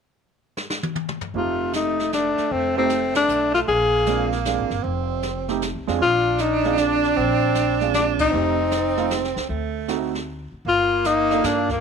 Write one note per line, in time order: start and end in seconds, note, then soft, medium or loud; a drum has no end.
0.57 snare medium
0.70 snare medium
0.83 high tom medium
0.95 high tom medium
1.08 mid tom medium
1.21 floor tom medium
1.34 2.33 F1 medium
1.34 3.69 A3 medium
1.34 1.94 A3 soft
1.34 1.94 C4 soft
1.34 1.94 D#4 soft
1.34 1.72 F4 medium
1.34 1.95 G4 soft
1.34 brush sweep soft
1.73 2.10 D#4 medium
1.73 snare soft
1.73 hi-hat pedal medium
1.99 snare soft
2.12 2.54 D4 medium
2.12 snare medium
2.12 hi-hat pedal medium
2.38 muted upright bass stroke soft
2.38 snare soft
2.51 3.25 F1 medium
2.51 2.77 C4 medium
2.51 brush sweep soft
2.77 2.89 A3 medium
2.77 2.89 C4 medium
2.77 3.13 C4 medium
2.77 2.89 D#4 medium
2.77 2.89 G4 medium
2.89 snare soft
2.89 hi-hat pedal soft
3.15 3.52 D4 medium
3.15 snare medium
3.15 ride medium
3.28 3.65 B1 medium
3.28 hi-hat pedal medium
3.54 3.60 F4 medium
3.54 snare soft
3.68 4.54 A#1 medium
3.68 4.84 A#3 medium
3.68 4.28 G#4 loud
3.68 brush sweep soft
4.06 4.30 G#3 medium
4.06 4.30 C4 medium
4.06 4.30 D4 medium
4.06 4.30 F4 medium
4.06 snare soft
4.06 hi-hat pedal soft
4.32 snare soft
4.45 4.69 G#3 soft
4.45 4.69 C4 soft
4.45 4.69 D4 medium
4.45 4.69 F4 medium
4.45 snare soft
4.45 hi-hat pedal soft
4.58 4.70 G#1 medium
4.70 4.83 G1 medium
4.70 snare soft
4.83 5.71 F1 medium
4.83 5.56 C4 medium
4.83 brush sweep soft
5.22 snare soft
5.22 hi-hat pedal soft
5.48 5.60 A3 medium
5.48 5.61 C4 medium
5.48 5.61 D#4 medium
5.48 5.61 G4 medium
5.48 snare soft
5.62 snare medium
5.62 hi-hat pedal medium
5.75 5.87 C2 medium
5.87 6.00 F2 medium
5.87 5.99 G#3 medium
5.87 5.99 C4 medium
5.87 6.00 D4 medium
5.87 6.00 F4 medium
5.87 snare soft
5.99 7.13 A#1 medium
5.99 8.33 D4 loud
5.99 6.42 F4 loud
5.99 brush sweep soft
6.38 6.80 D#4 medium
6.38 snare soft
6.38 hi-hat pedal soft
6.64 7.14 G#3 soft
6.64 7.14 C4 soft
6.64 7.14 D4 medium
6.64 7.15 F4 medium
6.64 snare soft
6.77 7.19 D4 medium
6.77 snare medium
6.77 hi-hat pedal soft
7.03 snare soft
7.17 8.29 A#1 medium
7.17 7.81 C4 medium
7.17 brush sweep soft
7.55 snare medium
7.55 hi-hat pedal soft
7.81 8.30 G#3 medium
7.81 8.31 C4 medium
7.81 8.31 D4 medium
7.81 8.31 F4 medium
7.81 snare soft
7.94 8.06 D4 medium
7.94 snare medium
7.94 hi-hat pedal medium
8.19 9.33 D#4 medium
8.19 kick medium
8.19 ride medium
8.31 9.32 F1 medium
8.31 8.56 A3 medium
8.31 9.49 C4 medium
8.31 8.56 C4 medium
8.31 8.57 D#4 medium
8.31 8.57 G4 medium
8.31 brush sweep soft
8.71 snare soft
8.71 hi-hat pedal soft
8.97 9.09 A3 medium
8.97 9.09 C4 medium
8.97 9.10 D#4 medium
8.97 9.10 F4 medium
8.97 snare soft
9.10 snare medium
9.10 hi-hat pedal soft
9.24 snare soft
9.36 9.49 C#2 medium
9.36 snare soft
9.49 10.49 D2 medium
9.49 10.18 A3 medium
9.49 brush sweep soft
9.88 10.11 A3 medium
9.88 10.11 C4 medium
9.88 10.12 D#4 medium
9.88 10.12 F#4 medium
9.88 snare soft
9.88 hi-hat pedal soft
10.15 snare soft
10.52 muted upright bass stroke soft
10.65 11.39 G1 medium
10.65 11.80 A#3 medium
10.65 11.08 F4 loud
10.65 brush sweep soft
11.04 11.47 D#4 medium
11.04 snare medium
11.04 hi-hat pedal soft
11.31 11.80 A#3 medium
11.31 11.80 D4 medium
11.31 11.80 F4 medium
11.31 11.80 A4 medium
11.31 snare soft
11.44 11.80 G2 medium
11.44 11.70 D4 medium
11.44 snare medium
11.44 hi-hat pedal medium
11.69 11.80 A#3 medium
11.69 kick soft
11.69 snare soft